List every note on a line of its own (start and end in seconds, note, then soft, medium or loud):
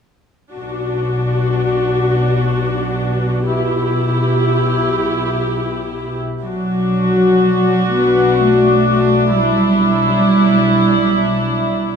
0.54 6.20 B1 soft
0.54 6.20 B2 soft
0.54 3.43 D4 soft
0.54 3.43 F#4 soft
3.47 6.19 E4 soft
3.47 6.19 G4 soft
6.44 11.96 B1 soft
6.44 7.88 F#3 soft
6.44 11.96 D4 soft
6.44 9.33 F#4 soft
7.92 8.41 B3 soft
8.41 9.37 A3 soft
9.36 11.75 G3 soft
9.36 11.96 E4 soft